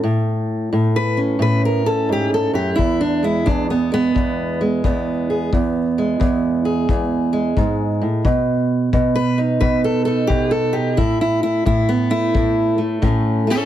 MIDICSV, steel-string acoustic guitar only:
0, 0, Header, 1, 2, 480
1, 0, Start_track
1, 0, Key_signature, 4, "major"
1, 0, Tempo, 683371
1, 21, Time_signature, 4, 2, 24, 8
1, 9589, End_track
2, 0, Start_track
2, 0, Title_t, "Steel-string acoustic guitar"
2, 0, Program_c, 0, 25
2, 24, Note_on_c, 0, 45, 74
2, 501, Note_off_c, 0, 45, 0
2, 510, Note_on_c, 0, 45, 70
2, 675, Note_on_c, 0, 71, 93
2, 822, Note_on_c, 0, 61, 47
2, 830, Note_off_c, 0, 71, 0
2, 967, Note_off_c, 0, 45, 0
2, 976, Note_on_c, 0, 45, 68
2, 998, Note_on_c, 0, 71, 96
2, 1152, Note_off_c, 0, 71, 0
2, 1161, Note_on_c, 0, 70, 74
2, 1299, Note_off_c, 0, 61, 0
2, 1307, Note_on_c, 0, 61, 47
2, 1309, Note_on_c, 0, 69, 94
2, 1314, Note_off_c, 0, 70, 0
2, 1467, Note_on_c, 0, 44, 65
2, 1468, Note_off_c, 0, 69, 0
2, 1492, Note_on_c, 0, 67, 86
2, 1640, Note_off_c, 0, 67, 0
2, 1643, Note_on_c, 0, 69, 90
2, 1777, Note_off_c, 0, 44, 0
2, 1780, Note_on_c, 0, 42, 61
2, 1788, Note_off_c, 0, 69, 0
2, 1791, Note_on_c, 0, 67, 85
2, 1933, Note_off_c, 0, 61, 0
2, 1936, Note_on_c, 0, 64, 86
2, 1944, Note_off_c, 0, 45, 0
2, 1949, Note_off_c, 0, 42, 0
2, 1950, Note_off_c, 0, 67, 0
2, 1957, Note_on_c, 0, 40, 73
2, 2103, Note_off_c, 0, 64, 0
2, 2112, Note_on_c, 0, 62, 88
2, 2267, Note_on_c, 0, 56, 45
2, 2271, Note_off_c, 0, 62, 0
2, 2277, Note_on_c, 0, 64, 84
2, 2429, Note_on_c, 0, 62, 86
2, 2434, Note_off_c, 0, 64, 0
2, 2436, Note_off_c, 0, 40, 0
2, 2439, Note_on_c, 0, 40, 69
2, 2590, Note_off_c, 0, 62, 0
2, 2601, Note_on_c, 0, 59, 80
2, 2748, Note_off_c, 0, 56, 0
2, 2751, Note_on_c, 0, 56, 47
2, 2756, Note_off_c, 0, 59, 0
2, 2765, Note_on_c, 0, 59, 101
2, 2910, Note_off_c, 0, 40, 0
2, 2913, Note_on_c, 0, 40, 72
2, 3228, Note_off_c, 0, 56, 0
2, 3237, Note_on_c, 0, 56, 46
2, 3239, Note_off_c, 0, 59, 0
2, 3393, Note_off_c, 0, 40, 0
2, 3404, Note_on_c, 0, 40, 72
2, 3408, Note_on_c, 0, 59, 48
2, 3722, Note_on_c, 0, 68, 47
2, 3859, Note_off_c, 0, 56, 0
2, 3861, Note_off_c, 0, 68, 0
2, 3877, Note_off_c, 0, 40, 0
2, 3885, Note_on_c, 0, 40, 75
2, 4201, Note_on_c, 0, 56, 54
2, 4344, Note_off_c, 0, 40, 0
2, 4353, Note_on_c, 0, 40, 68
2, 4672, Note_on_c, 0, 68, 56
2, 4833, Note_off_c, 0, 40, 0
2, 4845, Note_on_c, 0, 40, 68
2, 5138, Note_off_c, 0, 56, 0
2, 5147, Note_on_c, 0, 56, 55
2, 5315, Note_off_c, 0, 40, 0
2, 5317, Note_on_c, 0, 44, 61
2, 5627, Note_off_c, 0, 44, 0
2, 5630, Note_on_c, 0, 45, 57
2, 5773, Note_off_c, 0, 56, 0
2, 5776, Note_off_c, 0, 68, 0
2, 5795, Note_off_c, 0, 45, 0
2, 5795, Note_on_c, 0, 47, 74
2, 5800, Note_off_c, 0, 59, 0
2, 6266, Note_off_c, 0, 47, 0
2, 6274, Note_on_c, 0, 47, 70
2, 6430, Note_on_c, 0, 71, 101
2, 6588, Note_on_c, 0, 63, 44
2, 6590, Note_off_c, 0, 71, 0
2, 6746, Note_off_c, 0, 47, 0
2, 6747, Note_on_c, 0, 71, 93
2, 6754, Note_on_c, 0, 47, 71
2, 6908, Note_off_c, 0, 71, 0
2, 6914, Note_on_c, 0, 69, 82
2, 7051, Note_off_c, 0, 69, 0
2, 7060, Note_on_c, 0, 69, 87
2, 7064, Note_off_c, 0, 63, 0
2, 7077, Note_on_c, 0, 63, 49
2, 7216, Note_on_c, 0, 67, 101
2, 7224, Note_off_c, 0, 47, 0
2, 7224, Note_off_c, 0, 69, 0
2, 7232, Note_on_c, 0, 47, 73
2, 7382, Note_off_c, 0, 67, 0
2, 7382, Note_on_c, 0, 69, 97
2, 7532, Note_off_c, 0, 63, 0
2, 7536, Note_on_c, 0, 67, 89
2, 7540, Note_on_c, 0, 63, 47
2, 7545, Note_off_c, 0, 69, 0
2, 7687, Note_off_c, 0, 63, 0
2, 7689, Note_off_c, 0, 47, 0
2, 7701, Note_off_c, 0, 67, 0
2, 7705, Note_on_c, 0, 45, 77
2, 7707, Note_on_c, 0, 64, 92
2, 7866, Note_off_c, 0, 64, 0
2, 7875, Note_on_c, 0, 64, 86
2, 8020, Note_off_c, 0, 64, 0
2, 8028, Note_on_c, 0, 64, 98
2, 8178, Note_off_c, 0, 45, 0
2, 8186, Note_off_c, 0, 64, 0
2, 8186, Note_on_c, 0, 45, 72
2, 8194, Note_on_c, 0, 64, 90
2, 8349, Note_off_c, 0, 64, 0
2, 8350, Note_on_c, 0, 59, 90
2, 8500, Note_on_c, 0, 57, 48
2, 8505, Note_on_c, 0, 64, 107
2, 8506, Note_off_c, 0, 59, 0
2, 8661, Note_off_c, 0, 45, 0
2, 8669, Note_on_c, 0, 45, 75
2, 8968, Note_off_c, 0, 57, 0
2, 8976, Note_on_c, 0, 57, 49
2, 8981, Note_off_c, 0, 64, 0
2, 9136, Note_off_c, 0, 45, 0
2, 9145, Note_on_c, 0, 45, 75
2, 9151, Note_on_c, 0, 61, 52
2, 9453, Note_off_c, 0, 57, 0
2, 9462, Note_on_c, 0, 57, 49
2, 9464, Note_off_c, 0, 61, 0
2, 9484, Note_on_c, 0, 61, 84
2, 9488, Note_on_c, 0, 69, 90
2, 9589, Note_off_c, 0, 45, 0
2, 9589, Note_off_c, 0, 57, 0
2, 9589, Note_off_c, 0, 61, 0
2, 9589, Note_off_c, 0, 69, 0
2, 9589, End_track
0, 0, End_of_file